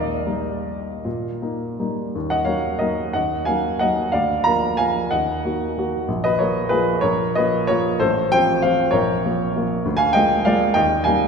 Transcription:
grand piano
Already playing: D#2 A#4 D#5
0.26 G3 A#3 D#4
1.05 A#2
1.42 A#3 D#4
1.79 G3 A#3 D#4
2.16 D#2
2.30 D#5 F#5
2.45 F#3 A#3 D#4 C#5 F5
2.79 F#3 A#3 D#4 A#4 D#5
3.13 D#2 D#5 F#5
3.45 F#3 A#3 D#4 F5 G#5
3.79 F#3 A#3 D#4 D#5 F#5
4.12 D2 D5 F5
4.44 F3 A#3 A#4 F5 A#5
4.77 F3 A#3 A#4 F5 G#5
5.11 D#2 D#5 F#5
5.45 D#3 A#3 F#4
5.77 D#3 A#3 F#4
6.08 A#1
6.24 B4 D#5
6.39 F3 A#3 F4 A#4 C#5
6.69 F3 A#3 F4 G#4 B4
7.01 A#1 A#4 C#5
7.35 F3 A#3 F4 B4 D#5
7.67 F3 A#3 F4 A#4 C#5
8.00 A1 A4 C5
8.32 F3 C4 F4 C5 G5
8.62 F3 C4 F4 C5 F5
8.91 A#1 A#4 C#5
9.25 F3 A#3 F4
9.56 F3 A#3 F4
9.85 D2
9.97 F5 G#5
10.13 G#3 A#3 F4 D#5 G5
10.45 G#3 A#3 F4 D5 F5
10.74 D#2 D#5 G5
11.04 G3 A#3 D#4 F5 G#5

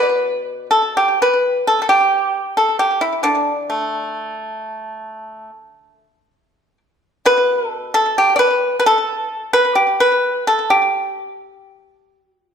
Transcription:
pipa
Already playing: B2
0.00 B4
0.71 A4
0.97 G4
1.22 B4
1.67 A4
1.82 A4
1.89 G4
2.57 A4
2.79 G4
3.01 E4
3.23 D3 D4
3.70 A3
7.25 B2 B4
7.68 A4
7.94 A4
8.18 G4
8.36 B4 D5
8.80 B4
8.86 A4
9.53 B4
9.75 G4
10.00 B4
10.47 A4
10.70 G4
12.20 F#4
12.46 F4

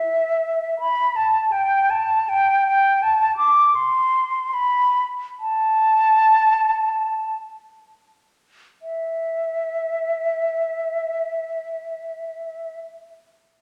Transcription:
flute
Already playing: E5
0.80 B5
1.16 A5
1.52 G5
1.90 A5
2.29 G5
2.67 G5
3.02 A5
3.37 D6
3.75 C6
4.54 B5
5.40 A5
8.82 E5

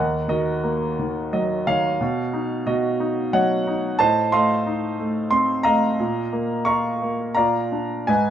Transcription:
grand piano
Already playing: D#2 A#4 D#5 F#5
0.28 D#3 F#4 A#4 D#5
0.64 A#3
0.99 D#3
1.33 F#3 D#5
1.67 D#3 C#5 F5
2.01 B2
2.33 D#4
2.67 B2 F#4 D#5
3.00 D#4
3.33 F#3 C#5 D#5 F#5
3.67 D#4
3.99 A2 C5 D#5 A5
4.32 A3 D#5 F5 C6
4.66 D#4
4.99 A3
5.31 C4 C6
5.63 A3 D#5 F5 A#5
6.00 A#2
6.33 A#3
6.65 F4 F5 A#5 C#6
7.02 A#3
7.35 A#2 D5 F5 A#5
7.72 D4
8.07 G#2 B4 D#5 G#5

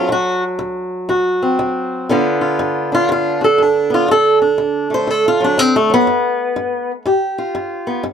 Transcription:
steel-string acoustic guitar
Already playing: F#3 F4
0.09 D2 F#4
0.59 D2
1.09 D2 F#4
1.42 C4
1.59 D2
2.09 G2 D3 B3 D4 F4
2.41 F4
2.59 G2
2.92 D4 F4
3.09 G2 F4
3.41 D4 A4
3.58 G2
3.62 D4
3.90 B3 F4
4.08 D2 A4
4.42 D4
4.58 D2
4.90 A3
4.94 C5
5.07 D2 A4
5.28 F4
5.40 F#3
5.44 D4
5.58 D2 C4
5.76 A3
5.90 F#3 B3
6.07 G2
6.56 G2
7.06 G2 G4
7.38 F4
7.55 G2
7.87 B3
8.03 G2

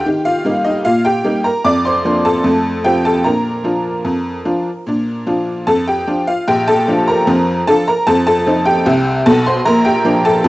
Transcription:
honky-tonk piano
0.06 D#3 G4
0.25 F4 F5
0.45 G3 A#3 D#4
0.65 D#4 D#5
0.85 A#2 F4 F5
1.05 G4 G5
1.24 G3 A#3 D#4
1.44 A#4 A#5
1.64 F2 D5 D6
1.85 C5 C6
2.05 F3 A#3 D4
2.25 A4 A5
2.44 F2 A3
2.84 F3 C4 F4 G4 G5
3.05 A4 A5
3.24 A#2 D4 A#4 A#5
3.64 F3 D4 F4
4.05 F2
4.45 F3 D4 F4
4.86 A#2 D4
5.27 F3 D4 F4
5.67 F2 A4 A5
5.88 G4 G5
6.07 F3 D4 F4
6.27 F4 F5
6.48 A#1 A#2 G4 G5
6.68 A4 A5
6.88 F3 D4 F4
7.08 A#4 A#5
7.27 F2 F3
7.67 F3 D4 F4 A4 A5
7.88 A#4 A#5
8.07 F2 F3 A4 A5
8.27 A4 A5
8.46 F3 C4 D#4
8.65 G4 G5
8.86 C2 C3
9.26 B1 B2 A4 A5
9.46 C5 C6
9.65 A#1 A#2 A#4 A#5
9.85 G4 G5
10.05 F3 A#3 D4
10.25 A4 A5
10.44 F2 F3

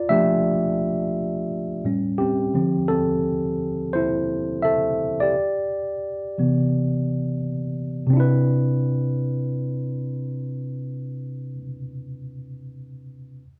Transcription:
tine electric piano
Already playing: F4 D5
0.09 F3 A3 D4 G4 E5
1.84 A2 G3 C#4
2.18 C4 G4
2.54 D3 F3 C4
2.88 C4 A4
3.93 E4 C5
4.62 A4 E5
5.20 G4 D5
6.38 C3 E3 B3
8.07 C3 C4
8.13 D4 E4
8.20 B4

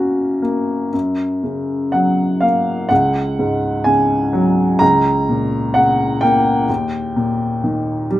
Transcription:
upright piano
Already playing: F#2 A#3 C#4 F#4
0.42 A#3
0.93 F#2
1.43 C#3
1.92 F#3 F#5
2.41 A#3 F5
2.89 C#2 F#5
3.39 G#2
3.84 C#3 G#5
4.33 F#3
4.79 C#2 A#5
5.29 A#2
5.74 C#3 F#5
6.21 A#3 G5
6.69 D#2
7.16 A#2
7.64 D#3
8.11 G3

